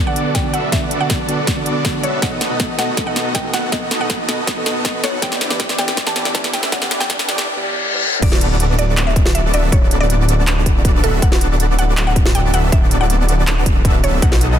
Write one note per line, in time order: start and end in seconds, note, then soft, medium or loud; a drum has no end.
0.00 0.51 B3 medium
0.00 0.51 D4 medium
0.00 0.51 F#4 medium
0.00 0.51 A4 medium
0.00 0.51 D5 medium
0.00 riser medium
0.06 0.42 D3 loud
0.06 0.42 B3 medium
0.06 0.42 F#4 medium
0.06 0.43 D5 loud
0.06 0.23 F#5 loud
0.16 closed hi-hat medium
0.35 0.46 G5 medium
0.35 kick loud
0.35 snare medium
0.35 closed hi-hat medium
0.43 0.54 D3 medium
0.43 0.54 B3 medium
0.43 0.54 F#4 medium
0.43 0.55 D5 medium
0.53 0.70 B3 medium
0.53 0.70 D4 medium
0.53 0.70 F#4 medium
0.53 0.70 A4 medium
0.53 0.70 E5 loud
0.53 0.64 F#5 medium
0.53 closed hi-hat medium
0.71 0.88 D3 medium
0.71 0.88 B3 medium
0.71 2.01 B3 medium
0.71 2.01 D4 medium
0.71 2.01 F#4 medium
0.71 0.88 F#4 medium
0.71 2.01 A4 medium
0.71 2.01 D5 medium
0.71 0.89 D5 medium
0.71 0.88 E5 medium
0.71 kick loud
0.71 snare medium
0.71 closed hi-hat medium
0.91 closed hi-hat medium
1.00 1.16 D3 medium
1.00 1.16 B3 medium
1.00 1.17 F#4 medium
1.00 1.17 D5 medium
1.00 1.17 F#5 loud
1.10 kick loud
1.10 snare medium
1.10 closed hi-hat medium
1.27 1.38 D3 medium
1.27 1.38 B3 medium
1.27 1.39 F#4 medium
1.27 1.39 D5 loud
1.27 closed hi-hat medium
1.47 kick medium
1.47 snare medium
1.47 closed hi-hat medium
1.56 1.92 D3 medium
1.56 1.92 B3 medium
1.56 1.92 F#4 medium
1.56 1.93 D5 loud
1.66 closed hi-hat medium
1.85 kick loud
1.85 snare medium
1.85 closed hi-hat medium
1.93 2.04 D3 medium
1.93 2.04 B3 medium
1.93 2.04 F#4 medium
1.93 2.05 D5 medium
2.03 2.20 B3 medium
2.03 2.20 D4 medium
2.03 2.20 F#4 medium
2.03 2.20 A4 medium
2.03 2.14 C#5 medium
2.03 2.20 E5 loud
2.03 closed hi-hat medium
2.21 2.38 B2 medium
2.21 2.38 B3 medium
2.21 3.51 B3 medium
2.21 3.51 D#4 medium
2.21 3.51 F#4 medium
2.21 3.51 A4 medium
2.21 2.38 A4 medium
2.21 3.51 D#5 medium
2.21 2.39 D#5 medium
2.21 2.38 F#5 loud
2.21 kick loud
2.21 snare medium
2.21 closed hi-hat medium
2.41 snare medium
2.41 closed hi-hat medium
2.50 2.66 B2 medium
2.50 2.66 B3 medium
2.50 2.67 A4 medium
2.50 2.67 D#5 medium
2.60 kick loud
2.60 snare medium
2.60 closed hi-hat medium
2.78 2.88 B2 medium
2.78 2.88 B3 medium
2.78 2.89 A4 medium
2.78 2.89 D#5 loud
2.78 2.95 F#5 medium
2.78 snare medium
2.78 closed hi-hat medium
2.97 kick loud
2.97 snare medium
2.97 closed hi-hat medium
3.06 3.42 B2 loud
3.06 3.42 B3 medium
3.06 3.42 A4 medium
3.06 3.43 D#5 loud
3.06 3.23 F#5 medium
3.16 snare medium
3.16 closed hi-hat medium
3.35 3.46 G5 medium
3.35 kick loud
3.35 snare medium
3.35 closed hi-hat medium
3.43 3.54 B2 medium
3.43 3.54 B3 medium
3.43 3.54 A4 medium
3.43 3.55 D#5 medium
3.53 3.70 B3 medium
3.53 3.70 D#4 medium
3.53 3.70 F#4 medium
3.53 3.70 A4 medium
3.53 3.70 F#5 loud
3.53 3.64 F#5 medium
3.53 snare medium
3.53 closed hi-hat medium
3.71 3.88 B2 medium
3.71 3.88 B3 medium
3.71 5.01 B3 medium
3.71 5.01 D#4 medium
3.71 5.01 F#4 medium
3.71 5.01 A4 medium
3.71 3.88 A4 medium
3.71 5.01 D#5 medium
3.71 3.88 D#5 medium
3.71 3.89 D#5 medium
3.71 kick loud
3.71 snare medium
3.71 closed hi-hat medium
3.91 snare medium
3.91 closed hi-hat medium
4.00 4.16 B2 medium
4.00 4.16 B3 medium
4.00 4.17 A4 medium
4.00 4.17 D#5 medium
4.00 4.17 F#5 loud
4.10 kick loud
4.10 snare medium
4.10 closed hi-hat medium
4.28 4.38 B2 medium
4.28 4.38 B3 medium
4.28 4.39 A4 medium
4.28 4.39 D#5 loud
4.28 snare medium
4.28 closed hi-hat medium
4.47 kick loud
4.47 snare medium
4.47 closed hi-hat medium
4.56 4.92 B2 loud
4.56 4.92 B3 medium
4.56 4.92 A4 medium
4.56 4.93 D#5 loud
4.66 snare medium
4.66 closed hi-hat medium
4.85 kick loud
4.85 snare medium
4.85 closed hi-hat medium
4.93 5.04 B2 medium
4.93 5.04 B3 medium
4.93 5.04 A4 medium
4.93 5.05 D#5 medium
5.03 5.20 B3 medium
5.03 5.20 D#4 medium
5.03 5.20 F#4 medium
5.03 5.20 A4 medium
5.03 5.14 C#5 medium
5.03 5.20 F#5 loud
5.03 snare medium
5.03 closed hi-hat medium
5.21 5.38 E3 medium
5.21 5.38 B3 medium
5.21 6.51 B3 medium
5.21 6.51 D4 medium
5.21 6.51 E4 medium
5.21 6.51 G4 medium
5.21 5.38 G4 medium
5.21 6.51 D5 medium
5.21 5.39 D5 medium
5.21 5.38 G5 loud
5.21 kick loud
5.21 snare medium
5.21 closed hi-hat medium
5.32 snare medium
5.41 snare loud
5.41 closed hi-hat medium
5.50 5.66 E3 medium
5.50 5.66 B3 medium
5.50 5.67 G4 medium
5.50 5.67 D5 medium
5.50 snare medium
5.60 kick loud
5.60 snare medium
5.60 closed hi-hat medium
5.69 snare medium
5.78 5.88 E3 medium
5.78 5.88 B3 medium
5.78 5.89 G4 medium
5.78 5.89 D5 loud
5.78 5.95 G5 medium
5.78 snare loud
5.78 closed hi-hat medium
5.88 snare medium
5.97 kick medium
5.97 snare medium
5.97 closed hi-hat medium
6.06 6.42 E3 loud
6.06 6.42 B3 medium
6.06 6.42 G4 medium
6.06 6.43 D5 loud
6.06 6.23 A5 loud
6.06 snare medium
6.16 snare loud
6.16 closed hi-hat medium
6.25 snare medium
6.35 6.46 A5 medium
6.35 kick loud
6.35 snare loud
6.35 closed hi-hat medium
6.43 6.54 E3 medium
6.43 6.54 B3 medium
6.43 6.54 G4 medium
6.43 6.55 D5 medium
6.43 snare medium
6.53 6.70 B3 medium
6.53 6.70 D4 medium
6.53 6.70 E4 medium
6.53 6.70 G4 medium
6.53 6.70 E5 loud
6.53 6.64 G5 medium
6.53 snare loud
6.53 closed hi-hat medium
6.63 snare medium
6.71 6.88 E3 medium
6.71 6.88 B3 medium
6.71 7.47 B3 medium
6.71 7.47 D4 medium
6.71 7.47 E4 medium
6.71 7.47 G4 medium
6.71 6.88 G4 medium
6.71 7.47 D5 medium
6.71 6.89 D5 medium
6.71 6.88 F#5 medium
6.71 kick loud
6.71 snare loud
6.71 closed hi-hat medium
6.82 snare medium
6.91 snare loud
6.91 closed hi-hat medium
7.00 7.16 E3 medium
7.00 7.16 B3 medium
7.00 7.17 G4 medium
7.00 7.17 D5 medium
7.00 7.16 G5 loud
7.00 snare medium
7.10 kick loud
7.10 snare loud
7.10 closed hi-hat medium
7.19 snare medium
7.28 7.38 E3 medium
7.28 7.38 B3 medium
7.28 7.39 G4 medium
7.28 7.39 D5 loud
7.28 snare loud
7.28 closed hi-hat medium
7.38 snare medium
7.47 reverse cymbal medium
7.56 7.92 E3 loud
7.56 7.92 B3 medium
7.56 7.92 G4 medium
7.56 7.92 D5 loud
7.93 8.04 E3 medium
7.93 8.04 B3 medium
7.93 8.04 G4 medium
7.93 8.05 D5 medium
7.93 high tom medium
8.04 mid tom medium
8.13 mid tom medium
8.22 9.52 D1 medium
8.22 9.51 B3 medium
8.22 9.51 D4 medium
8.22 9.51 F#4 medium
8.22 9.51 A4 medium
8.22 9.51 D5 medium
8.22 8.38 D5 loud
8.22 kick loud
8.22 closed hi-hat medium
8.22 crash loud
8.32 snare medium
8.41 closed hi-hat medium
8.60 closed hi-hat medium
8.79 8.95 D5 medium
8.79 closed hi-hat medium
8.97 clap loud
8.97 closed hi-hat medium
9.07 9.23 E5 medium
9.16 kick loud
9.16 closed hi-hat medium
9.26 snare medium
9.35 9.45 E5 loud
9.35 closed hi-hat medium
9.54 9.71 D1 medium
9.54 9.70 B3 medium
9.54 9.70 D4 medium
9.54 9.70 F#4 medium
9.54 9.70 A4 medium
9.54 9.64 D5 medium
9.54 9.70 E5 loud
9.54 closed hi-hat medium
9.72 11.02 D1 loud
9.72 11.01 B3 medium
9.72 11.01 D4 medium
9.72 11.01 F#4 medium
9.72 11.01 A4 medium
9.72 9.88 C#5 medium
9.72 11.01 D5 medium
9.72 kick loud
9.72 closed hi-hat medium
9.91 closed hi-hat medium
10.00 10.16 D5 loud
10.10 closed hi-hat medium
10.29 closed hi-hat medium
10.47 clap loud
10.47 closed hi-hat medium
10.66 kick medium
10.66 closed hi-hat medium
10.85 kick loud
10.85 closed hi-hat medium
11.03 11.20 D1 loud
11.03 11.20 B3 medium
11.03 11.20 D4 medium
11.03 11.20 F#4 medium
11.03 11.20 A4 medium
11.03 11.14 A4 medium
11.03 11.20 E5 loud
11.03 closed hi-hat medium
11.22 12.52 D1 loud
11.22 12.51 B3 medium
11.22 12.51 D4 medium
11.22 12.51 F#4 medium
11.22 12.51 A4 medium
11.22 12.51 D5 medium
11.22 11.38 F#5 loud
11.22 kick loud
11.22 closed hi-hat medium
11.32 snare medium
11.41 closed hi-hat medium
11.60 closed hi-hat medium
11.79 11.95 F#5 loud
11.79 closed hi-hat medium
11.97 clap loud
11.97 closed hi-hat medium
12.07 12.23 F#5 medium
12.16 kick loud
12.16 closed hi-hat medium
12.26 snare medium
12.35 12.46 G5 medium
12.35 closed hi-hat medium
12.54 12.70 D1 loud
12.54 12.70 B3 medium
12.54 12.70 D4 medium
12.54 12.70 F#4 medium
12.54 12.70 A4 medium
12.54 12.70 E5 loud
12.54 12.64 F#5 medium
12.54 closed hi-hat medium
12.72 13.64 D1 loud
12.72 13.64 B3 medium
12.72 13.64 D4 medium
12.72 13.64 F#4 medium
12.72 13.64 A4 medium
12.72 13.64 D5 medium
12.72 12.88 E5 loud
12.72 kick loud
12.72 closed hi-hat medium
12.91 closed hi-hat medium
13.01 13.17 F#5 loud
13.10 closed hi-hat medium
13.29 closed hi-hat medium
13.47 clap loud
13.47 closed hi-hat medium
13.66 14.20 D1 loud
13.66 14.20 B3 medium
13.66 14.20 D4 medium
13.66 14.20 F#4 medium
13.66 14.20 A4 medium
13.66 14.20 E5 medium
13.66 kick medium
13.66 closed hi-hat medium
13.85 kick loud
13.85 closed hi-hat medium
14.04 14.14 C#5 medium
14.04 closed hi-hat medium
14.22 14.59 B1 loud
14.22 14.59 B3 medium
14.22 14.59 D#4 medium
14.22 14.59 F#4 medium
14.22 14.59 A4 medium
14.22 14.59 D#5 medium
14.22 14.38 F#5 loud
14.22 kick loud
14.22 closed hi-hat medium
14.32 snare medium
14.41 closed hi-hat medium